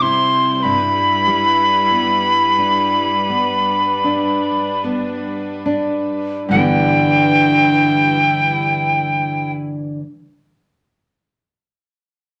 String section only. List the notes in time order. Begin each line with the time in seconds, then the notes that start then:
Already playing: G3 E4 C5
0.66 E4 B4
3.31 D4
6.51 G3 E4 B4